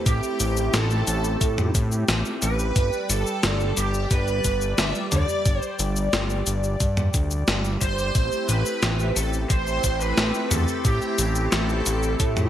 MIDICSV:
0, 0, Header, 1, 6, 480
1, 0, Start_track
1, 0, Key_signature, 0, "minor"
1, 0, Tempo, 674157
1, 44, Time_signature, 4, 2, 24, 8
1, 8896, End_track
2, 0, Start_track
2, 0, Title_t, "Lead electric guitar"
2, 0, Program_c, 0, 29
2, 49, Note_on_c, 0, 67, 93
2, 529, Note_on_c, 0, 69, 79
2, 541, Note_off_c, 0, 67, 0
2, 1218, Note_off_c, 0, 69, 0
2, 1727, Note_on_c, 0, 71, 94
2, 2203, Note_off_c, 0, 71, 0
2, 2206, Note_on_c, 0, 69, 94
2, 2686, Note_on_c, 0, 67, 91
2, 2700, Note_off_c, 0, 69, 0
2, 2925, Note_on_c, 0, 71, 99
2, 2932, Note_off_c, 0, 67, 0
2, 3406, Note_on_c, 0, 76, 114
2, 3419, Note_off_c, 0, 71, 0
2, 3471, Note_off_c, 0, 76, 0
2, 3646, Note_on_c, 0, 74, 100
2, 3987, Note_off_c, 0, 74, 0
2, 3987, Note_on_c, 0, 72, 100
2, 4097, Note_off_c, 0, 72, 0
2, 5563, Note_on_c, 0, 72, 114
2, 6039, Note_off_c, 0, 72, 0
2, 6042, Note_on_c, 0, 71, 107
2, 6519, Note_off_c, 0, 71, 0
2, 6521, Note_on_c, 0, 69, 99
2, 6587, Note_off_c, 0, 69, 0
2, 6760, Note_on_c, 0, 72, 108
2, 7118, Note_off_c, 0, 72, 0
2, 7121, Note_on_c, 0, 71, 105
2, 7477, Note_off_c, 0, 71, 0
2, 7479, Note_on_c, 0, 69, 91
2, 7720, Note_on_c, 0, 67, 96
2, 7729, Note_off_c, 0, 69, 0
2, 8173, Note_off_c, 0, 67, 0
2, 8202, Note_on_c, 0, 69, 82
2, 8895, Note_off_c, 0, 69, 0
2, 8896, End_track
3, 0, Start_track
3, 0, Title_t, "String machine"
3, 0, Program_c, 1, 50
3, 45, Note_on_c, 1, 67, 100
3, 525, Note_on_c, 1, 69, 91
3, 539, Note_off_c, 1, 67, 0
3, 1216, Note_off_c, 1, 69, 0
3, 1725, Note_on_c, 1, 71, 106
3, 2208, Note_on_c, 1, 69, 103
3, 2219, Note_off_c, 1, 71, 0
3, 2688, Note_on_c, 1, 67, 95
3, 2701, Note_off_c, 1, 69, 0
3, 2927, Note_on_c, 1, 71, 110
3, 2933, Note_off_c, 1, 67, 0
3, 3407, Note_on_c, 1, 76, 114
3, 3420, Note_off_c, 1, 71, 0
3, 3507, Note_off_c, 1, 76, 0
3, 3644, Note_on_c, 1, 74, 110
3, 3986, Note_off_c, 1, 74, 0
3, 3986, Note_on_c, 1, 72, 110
3, 4096, Note_off_c, 1, 72, 0
3, 5563, Note_on_c, 1, 72, 122
3, 6042, Note_on_c, 1, 71, 118
3, 6058, Note_off_c, 1, 72, 0
3, 6521, Note_on_c, 1, 69, 94
3, 6537, Note_off_c, 1, 71, 0
3, 6621, Note_off_c, 1, 69, 0
3, 6760, Note_on_c, 1, 72, 116
3, 7122, Note_on_c, 1, 71, 111
3, 7133, Note_off_c, 1, 72, 0
3, 7481, Note_on_c, 1, 69, 97
3, 7494, Note_off_c, 1, 71, 0
3, 7722, Note_on_c, 1, 67, 101
3, 7730, Note_off_c, 1, 69, 0
3, 8174, Note_off_c, 1, 67, 0
3, 8205, Note_on_c, 1, 69, 94
3, 8896, Note_off_c, 1, 69, 0
3, 8896, End_track
4, 0, Start_track
4, 0, Title_t, "Analog synth pad"
4, 0, Program_c, 2, 89
4, 0, Note_on_c, 2, 57, 85
4, 0, Note_on_c, 2, 60, 93
4, 0, Note_on_c, 2, 64, 76
4, 0, Note_on_c, 2, 67, 77
4, 1935, Note_off_c, 2, 60, 0
4, 1935, Note_off_c, 2, 64, 0
4, 1936, Note_off_c, 2, 57, 0
4, 1964, Note_on_c, 2, 55, 84
4, 1965, Note_on_c, 2, 74, 92
4, 5775, Note_off_c, 2, 55, 0
4, 5775, Note_off_c, 2, 67, 0
4, 5776, Note_off_c, 2, 74, 0
4, 5804, Note_on_c, 2, 64, 77
4, 5804, Note_on_c, 2, 67, 77
4, 5805, Note_on_c, 2, 57, 84
4, 5805, Note_on_c, 2, 60, 91
4, 8896, Note_off_c, 2, 57, 0
4, 8896, Note_off_c, 2, 60, 0
4, 8896, Note_off_c, 2, 64, 0
4, 8896, Note_off_c, 2, 67, 0
4, 8896, End_track
5, 0, Start_track
5, 0, Title_t, "Analog synth bass"
5, 0, Program_c, 3, 38
5, 45, Note_on_c, 3, 33, 87
5, 150, Note_off_c, 3, 33, 0
5, 286, Note_on_c, 3, 33, 97
5, 496, Note_off_c, 3, 33, 0
5, 525, Note_on_c, 3, 33, 100
5, 735, Note_off_c, 3, 33, 0
5, 765, Note_on_c, 3, 33, 95
5, 975, Note_off_c, 3, 33, 0
5, 1004, Note_on_c, 3, 45, 81
5, 1215, Note_off_c, 3, 45, 0
5, 1244, Note_on_c, 3, 45, 107
5, 1455, Note_off_c, 3, 45, 0
5, 1485, Note_on_c, 3, 33, 101
5, 1590, Note_off_c, 3, 33, 0
5, 1727, Note_on_c, 3, 33, 91
5, 1936, Note_off_c, 3, 33, 0
5, 1965, Note_on_c, 3, 31, 97
5, 2070, Note_off_c, 3, 31, 0
5, 2205, Note_on_c, 3, 31, 106
5, 2310, Note_off_c, 3, 31, 0
5, 2446, Note_on_c, 3, 31, 85
5, 2656, Note_off_c, 3, 31, 0
5, 2686, Note_on_c, 3, 31, 89
5, 2896, Note_off_c, 3, 31, 0
5, 2926, Note_on_c, 3, 31, 86
5, 3136, Note_off_c, 3, 31, 0
5, 3166, Note_on_c, 3, 31, 97
5, 3376, Note_off_c, 3, 31, 0
5, 3407, Note_on_c, 3, 31, 96
5, 3511, Note_off_c, 3, 31, 0
5, 3646, Note_on_c, 3, 38, 101
5, 3750, Note_off_c, 3, 38, 0
5, 3885, Note_on_c, 3, 31, 83
5, 3990, Note_off_c, 3, 31, 0
5, 4125, Note_on_c, 3, 31, 97
5, 4336, Note_off_c, 3, 31, 0
5, 4365, Note_on_c, 3, 31, 99
5, 4575, Note_off_c, 3, 31, 0
5, 4604, Note_on_c, 3, 31, 92
5, 4815, Note_off_c, 3, 31, 0
5, 4845, Note_on_c, 3, 43, 81
5, 5056, Note_off_c, 3, 43, 0
5, 5085, Note_on_c, 3, 38, 90
5, 5296, Note_off_c, 3, 38, 0
5, 5323, Note_on_c, 3, 31, 93
5, 5535, Note_off_c, 3, 31, 0
5, 5565, Note_on_c, 3, 31, 81
5, 5776, Note_off_c, 3, 31, 0
5, 5805, Note_on_c, 3, 33, 101
5, 5910, Note_off_c, 3, 33, 0
5, 6044, Note_on_c, 3, 33, 106
5, 6149, Note_off_c, 3, 33, 0
5, 6283, Note_on_c, 3, 33, 87
5, 6495, Note_off_c, 3, 33, 0
5, 6523, Note_on_c, 3, 33, 89
5, 6735, Note_off_c, 3, 33, 0
5, 6765, Note_on_c, 3, 33, 84
5, 6975, Note_off_c, 3, 33, 0
5, 7005, Note_on_c, 3, 33, 96
5, 7216, Note_off_c, 3, 33, 0
5, 7243, Note_on_c, 3, 33, 92
5, 7349, Note_off_c, 3, 33, 0
5, 7484, Note_on_c, 3, 40, 98
5, 7590, Note_off_c, 3, 40, 0
5, 7724, Note_on_c, 3, 33, 85
5, 7830, Note_off_c, 3, 33, 0
5, 7964, Note_on_c, 3, 33, 98
5, 8175, Note_off_c, 3, 33, 0
5, 8206, Note_on_c, 3, 33, 98
5, 8416, Note_off_c, 3, 33, 0
5, 8447, Note_on_c, 3, 33, 94
5, 8657, Note_off_c, 3, 33, 0
5, 8685, Note_on_c, 3, 45, 82
5, 8896, Note_off_c, 3, 45, 0
5, 8896, End_track
6, 0, Start_track
6, 0, Title_t, "Drums"
6, 44, Note_on_c, 9, 36, 123
6, 45, Note_on_c, 9, 42, 98
6, 45, Note_on_c, 9, 69, 39
6, 115, Note_off_c, 9, 36, 0
6, 116, Note_off_c, 9, 42, 0
6, 116, Note_off_c, 9, 69, 0
6, 165, Note_on_c, 9, 69, 20
6, 236, Note_off_c, 9, 69, 0
6, 284, Note_on_c, 9, 42, 71
6, 284, Note_on_c, 9, 69, 72
6, 356, Note_off_c, 9, 42, 0
6, 356, Note_off_c, 9, 69, 0
6, 405, Note_on_c, 9, 69, 31
6, 476, Note_off_c, 9, 69, 0
6, 525, Note_on_c, 9, 38, 124
6, 525, Note_on_c, 9, 42, 97
6, 525, Note_on_c, 9, 69, 42
6, 596, Note_off_c, 9, 38, 0
6, 596, Note_off_c, 9, 42, 0
6, 596, Note_off_c, 9, 69, 0
6, 645, Note_on_c, 9, 69, 21
6, 716, Note_off_c, 9, 69, 0
6, 764, Note_on_c, 9, 42, 72
6, 764, Note_on_c, 9, 69, 72
6, 835, Note_off_c, 9, 42, 0
6, 835, Note_off_c, 9, 69, 0
6, 885, Note_on_c, 9, 69, 30
6, 956, Note_off_c, 9, 69, 0
6, 1004, Note_on_c, 9, 36, 127
6, 1006, Note_on_c, 9, 42, 99
6, 1006, Note_on_c, 9, 69, 42
6, 1076, Note_off_c, 9, 36, 0
6, 1077, Note_off_c, 9, 42, 0
6, 1077, Note_off_c, 9, 69, 0
6, 1126, Note_on_c, 9, 45, 88
6, 1126, Note_on_c, 9, 69, 19
6, 1197, Note_off_c, 9, 45, 0
6, 1197, Note_off_c, 9, 69, 0
6, 1245, Note_on_c, 9, 36, 109
6, 1245, Note_on_c, 9, 42, 70
6, 1245, Note_on_c, 9, 69, 71
6, 1316, Note_off_c, 9, 36, 0
6, 1316, Note_off_c, 9, 42, 0
6, 1316, Note_off_c, 9, 69, 0
6, 1365, Note_on_c, 9, 69, 29
6, 1437, Note_off_c, 9, 69, 0
6, 1484, Note_on_c, 9, 38, 127
6, 1484, Note_on_c, 9, 42, 98
6, 1484, Note_on_c, 9, 69, 41
6, 1556, Note_off_c, 9, 38, 0
6, 1556, Note_off_c, 9, 42, 0
6, 1556, Note_off_c, 9, 69, 0
6, 1604, Note_on_c, 9, 69, 20
6, 1675, Note_off_c, 9, 69, 0
6, 1724, Note_on_c, 9, 42, 68
6, 1724, Note_on_c, 9, 69, 72
6, 1796, Note_off_c, 9, 42, 0
6, 1796, Note_off_c, 9, 69, 0
6, 1845, Note_on_c, 9, 69, 30
6, 1916, Note_off_c, 9, 69, 0
6, 1965, Note_on_c, 9, 36, 127
6, 1965, Note_on_c, 9, 42, 97
6, 1965, Note_on_c, 9, 69, 39
6, 2036, Note_off_c, 9, 36, 0
6, 2036, Note_off_c, 9, 42, 0
6, 2036, Note_off_c, 9, 69, 0
6, 2084, Note_on_c, 9, 69, 19
6, 2156, Note_off_c, 9, 69, 0
6, 2205, Note_on_c, 9, 42, 69
6, 2205, Note_on_c, 9, 69, 70
6, 2276, Note_off_c, 9, 42, 0
6, 2276, Note_off_c, 9, 69, 0
6, 2325, Note_on_c, 9, 69, 30
6, 2397, Note_off_c, 9, 69, 0
6, 2445, Note_on_c, 9, 38, 127
6, 2445, Note_on_c, 9, 42, 98
6, 2445, Note_on_c, 9, 69, 39
6, 2516, Note_off_c, 9, 38, 0
6, 2516, Note_off_c, 9, 42, 0
6, 2516, Note_off_c, 9, 69, 0
6, 2565, Note_on_c, 9, 69, 19
6, 2636, Note_off_c, 9, 69, 0
6, 2685, Note_on_c, 9, 42, 68
6, 2685, Note_on_c, 9, 69, 69
6, 2756, Note_off_c, 9, 42, 0
6, 2756, Note_off_c, 9, 69, 0
6, 2806, Note_on_c, 9, 69, 29
6, 2877, Note_off_c, 9, 69, 0
6, 2925, Note_on_c, 9, 36, 127
6, 2925, Note_on_c, 9, 42, 97
6, 2925, Note_on_c, 9, 69, 40
6, 2996, Note_off_c, 9, 36, 0
6, 2996, Note_off_c, 9, 42, 0
6, 2996, Note_off_c, 9, 69, 0
6, 3045, Note_on_c, 9, 69, 19
6, 3116, Note_off_c, 9, 69, 0
6, 3164, Note_on_c, 9, 42, 71
6, 3164, Note_on_c, 9, 69, 69
6, 3165, Note_on_c, 9, 36, 67
6, 3236, Note_off_c, 9, 36, 0
6, 3236, Note_off_c, 9, 42, 0
6, 3236, Note_off_c, 9, 69, 0
6, 3285, Note_on_c, 9, 69, 28
6, 3356, Note_off_c, 9, 69, 0
6, 3405, Note_on_c, 9, 38, 127
6, 3405, Note_on_c, 9, 42, 97
6, 3405, Note_on_c, 9, 69, 40
6, 3476, Note_off_c, 9, 38, 0
6, 3476, Note_off_c, 9, 42, 0
6, 3476, Note_off_c, 9, 69, 0
6, 3525, Note_on_c, 9, 69, 20
6, 3596, Note_off_c, 9, 69, 0
6, 3645, Note_on_c, 9, 42, 68
6, 3645, Note_on_c, 9, 45, 89
6, 3645, Note_on_c, 9, 69, 69
6, 3716, Note_off_c, 9, 42, 0
6, 3716, Note_off_c, 9, 45, 0
6, 3716, Note_off_c, 9, 69, 0
6, 3765, Note_on_c, 9, 69, 29
6, 3836, Note_off_c, 9, 69, 0
6, 3884, Note_on_c, 9, 42, 92
6, 3884, Note_on_c, 9, 69, 37
6, 3885, Note_on_c, 9, 36, 125
6, 3955, Note_off_c, 9, 42, 0
6, 3955, Note_off_c, 9, 69, 0
6, 3956, Note_off_c, 9, 36, 0
6, 4005, Note_on_c, 9, 69, 19
6, 4076, Note_off_c, 9, 69, 0
6, 4125, Note_on_c, 9, 42, 65
6, 4125, Note_on_c, 9, 69, 67
6, 4196, Note_off_c, 9, 42, 0
6, 4196, Note_off_c, 9, 69, 0
6, 4245, Note_on_c, 9, 69, 28
6, 4316, Note_off_c, 9, 69, 0
6, 4366, Note_on_c, 9, 38, 126
6, 4366, Note_on_c, 9, 42, 91
6, 4366, Note_on_c, 9, 69, 39
6, 4437, Note_off_c, 9, 38, 0
6, 4437, Note_off_c, 9, 42, 0
6, 4437, Note_off_c, 9, 69, 0
6, 4485, Note_on_c, 9, 69, 19
6, 4556, Note_off_c, 9, 69, 0
6, 4604, Note_on_c, 9, 42, 64
6, 4604, Note_on_c, 9, 69, 67
6, 4675, Note_off_c, 9, 42, 0
6, 4675, Note_off_c, 9, 69, 0
6, 4724, Note_on_c, 9, 69, 29
6, 4795, Note_off_c, 9, 69, 0
6, 4844, Note_on_c, 9, 42, 96
6, 4844, Note_on_c, 9, 69, 39
6, 4845, Note_on_c, 9, 36, 125
6, 4915, Note_off_c, 9, 42, 0
6, 4915, Note_off_c, 9, 69, 0
6, 4916, Note_off_c, 9, 36, 0
6, 4964, Note_on_c, 9, 45, 87
6, 4964, Note_on_c, 9, 69, 19
6, 5035, Note_off_c, 9, 45, 0
6, 5035, Note_off_c, 9, 69, 0
6, 5084, Note_on_c, 9, 42, 65
6, 5084, Note_on_c, 9, 69, 68
6, 5085, Note_on_c, 9, 36, 108
6, 5155, Note_off_c, 9, 42, 0
6, 5155, Note_off_c, 9, 69, 0
6, 5156, Note_off_c, 9, 36, 0
6, 5203, Note_on_c, 9, 69, 28
6, 5275, Note_off_c, 9, 69, 0
6, 5324, Note_on_c, 9, 38, 125
6, 5324, Note_on_c, 9, 42, 94
6, 5324, Note_on_c, 9, 69, 39
6, 5395, Note_off_c, 9, 38, 0
6, 5395, Note_off_c, 9, 42, 0
6, 5395, Note_off_c, 9, 69, 0
6, 5443, Note_on_c, 9, 69, 19
6, 5515, Note_off_c, 9, 69, 0
6, 5564, Note_on_c, 9, 36, 65
6, 5564, Note_on_c, 9, 42, 68
6, 5564, Note_on_c, 9, 69, 69
6, 5635, Note_off_c, 9, 36, 0
6, 5635, Note_off_c, 9, 42, 0
6, 5635, Note_off_c, 9, 69, 0
6, 5684, Note_on_c, 9, 69, 29
6, 5755, Note_off_c, 9, 69, 0
6, 5803, Note_on_c, 9, 42, 89
6, 5803, Note_on_c, 9, 69, 39
6, 5804, Note_on_c, 9, 36, 122
6, 5874, Note_off_c, 9, 42, 0
6, 5874, Note_off_c, 9, 69, 0
6, 5875, Note_off_c, 9, 36, 0
6, 5924, Note_on_c, 9, 69, 19
6, 5995, Note_off_c, 9, 69, 0
6, 6044, Note_on_c, 9, 42, 65
6, 6044, Note_on_c, 9, 69, 68
6, 6115, Note_off_c, 9, 42, 0
6, 6115, Note_off_c, 9, 69, 0
6, 6164, Note_on_c, 9, 69, 28
6, 6235, Note_off_c, 9, 69, 0
6, 6284, Note_on_c, 9, 38, 117
6, 6284, Note_on_c, 9, 42, 93
6, 6284, Note_on_c, 9, 69, 39
6, 6355, Note_off_c, 9, 38, 0
6, 6355, Note_off_c, 9, 42, 0
6, 6355, Note_off_c, 9, 69, 0
6, 6404, Note_on_c, 9, 69, 19
6, 6475, Note_off_c, 9, 69, 0
6, 6525, Note_on_c, 9, 42, 62
6, 6525, Note_on_c, 9, 69, 68
6, 6596, Note_off_c, 9, 42, 0
6, 6596, Note_off_c, 9, 69, 0
6, 6645, Note_on_c, 9, 69, 30
6, 6716, Note_off_c, 9, 69, 0
6, 6764, Note_on_c, 9, 36, 123
6, 6764, Note_on_c, 9, 42, 90
6, 6764, Note_on_c, 9, 69, 38
6, 6835, Note_off_c, 9, 36, 0
6, 6836, Note_off_c, 9, 42, 0
6, 6836, Note_off_c, 9, 69, 0
6, 6885, Note_on_c, 9, 69, 19
6, 6956, Note_off_c, 9, 69, 0
6, 7004, Note_on_c, 9, 36, 63
6, 7004, Note_on_c, 9, 42, 65
6, 7004, Note_on_c, 9, 69, 67
6, 7076, Note_off_c, 9, 36, 0
6, 7076, Note_off_c, 9, 42, 0
6, 7076, Note_off_c, 9, 69, 0
6, 7125, Note_on_c, 9, 69, 28
6, 7197, Note_off_c, 9, 69, 0
6, 7245, Note_on_c, 9, 38, 118
6, 7245, Note_on_c, 9, 42, 91
6, 7245, Note_on_c, 9, 69, 39
6, 7316, Note_off_c, 9, 38, 0
6, 7316, Note_off_c, 9, 42, 0
6, 7316, Note_off_c, 9, 69, 0
6, 7365, Note_on_c, 9, 69, 20
6, 7436, Note_off_c, 9, 69, 0
6, 7485, Note_on_c, 9, 42, 63
6, 7485, Note_on_c, 9, 45, 94
6, 7485, Note_on_c, 9, 69, 66
6, 7556, Note_off_c, 9, 42, 0
6, 7556, Note_off_c, 9, 45, 0
6, 7556, Note_off_c, 9, 69, 0
6, 7604, Note_on_c, 9, 69, 29
6, 7675, Note_off_c, 9, 69, 0
6, 7724, Note_on_c, 9, 36, 115
6, 7724, Note_on_c, 9, 42, 89
6, 7724, Note_on_c, 9, 69, 39
6, 7795, Note_off_c, 9, 42, 0
6, 7795, Note_off_c, 9, 69, 0
6, 7796, Note_off_c, 9, 36, 0
6, 7844, Note_on_c, 9, 69, 20
6, 7915, Note_off_c, 9, 69, 0
6, 7964, Note_on_c, 9, 42, 65
6, 7964, Note_on_c, 9, 69, 69
6, 8035, Note_off_c, 9, 42, 0
6, 8035, Note_off_c, 9, 69, 0
6, 8084, Note_on_c, 9, 69, 30
6, 8155, Note_off_c, 9, 69, 0
6, 8204, Note_on_c, 9, 38, 116
6, 8204, Note_on_c, 9, 42, 90
6, 8204, Note_on_c, 9, 69, 39
6, 8275, Note_off_c, 9, 38, 0
6, 8275, Note_off_c, 9, 42, 0
6, 8275, Note_off_c, 9, 69, 0
6, 8325, Note_on_c, 9, 69, 20
6, 8396, Note_off_c, 9, 69, 0
6, 8445, Note_on_c, 9, 42, 64
6, 8445, Note_on_c, 9, 69, 69
6, 8516, Note_off_c, 9, 42, 0
6, 8516, Note_off_c, 9, 69, 0
6, 8564, Note_on_c, 9, 69, 30
6, 8635, Note_off_c, 9, 69, 0
6, 8685, Note_on_c, 9, 36, 119
6, 8685, Note_on_c, 9, 42, 92
6, 8685, Note_on_c, 9, 69, 39
6, 8756, Note_off_c, 9, 36, 0
6, 8756, Note_off_c, 9, 42, 0
6, 8756, Note_off_c, 9, 69, 0
6, 8805, Note_on_c, 9, 45, 95
6, 8805, Note_on_c, 9, 69, 19
6, 8877, Note_off_c, 9, 45, 0
6, 8877, Note_off_c, 9, 69, 0
6, 8896, End_track
0, 0, End_of_file